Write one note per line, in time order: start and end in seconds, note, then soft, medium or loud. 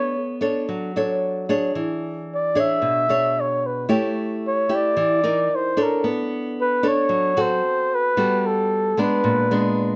0.00 0.65 B3 medium
0.00 0.14 D4 soft
0.00 0.15 A4 soft
0.00 0.15 C#5 medium
0.00 0.39 C#5 loud
0.41 0.91 D4 medium
0.41 0.91 A4 medium
0.41 0.91 C#5 medium
0.69 1.73 F#3 medium
0.96 1.45 D4 medium
0.96 1.45 A4 medium
0.96 1.45 C#5 medium
1.49 2.52 D4 medium
1.49 2.52 G#4 medium
1.49 2.52 C#5 medium
1.75 2.80 E3 medium
2.34 2.61 D5 medium
2.55 3.05 D4 medium
2.55 3.05 G#4 medium
2.55 3.05 C#5 medium
2.60 3.42 E5 loud
2.82 3.87 B2 medium
3.09 3.85 D4 medium
3.09 3.86 G#4 medium
3.09 3.86 C#5 medium
3.40 3.68 C#5 medium
3.66 3.91 B4 medium
3.89 4.94 A3 medium
3.89 4.65 E4 soft
3.89 4.65 G4 medium
3.89 4.66 C#5 medium
4.47 4.76 C#5 medium
4.69 5.19 E4 medium
4.69 5.19 G4 medium
4.75 5.57 D5 loud
4.97 5.48 E3 medium
5.23 5.73 D#4 medium
5.23 5.73 A#4 medium
5.23 5.73 D5 medium
5.55 5.84 C5 medium
5.77 6.80 D4 medium
5.77 6.80 A4 medium
5.77 6.80 C#5 medium
5.83 6.07 A#4 medium
6.04 7.08 B3 medium
6.61 6.89 B4 medium
6.83 7.33 D4 medium
6.83 7.33 A4 medium
6.83 7.33 C#5 medium
6.88 7.43 C#5 loud
7.09 7.61 F#3 medium
7.37 8.13 C4 medium
7.37 8.13 F#4 medium
7.37 8.14 A4 medium
7.41 7.96 C5 loud
7.95 8.48 B4 medium
8.17 8.97 G3 medium
8.17 8.94 B3 medium
8.17 8.94 F#4 medium
8.17 8.94 A4 medium
8.46 9.02 A4 medium
8.97 9.47 G#3 medium
8.97 9.48 B3 medium
8.97 9.48 D4 medium
8.97 9.96 B4 medium
9.24 9.96 A#2 medium
9.51 9.96 G#3 medium
9.51 9.96 B3 medium
9.51 9.96 D4 medium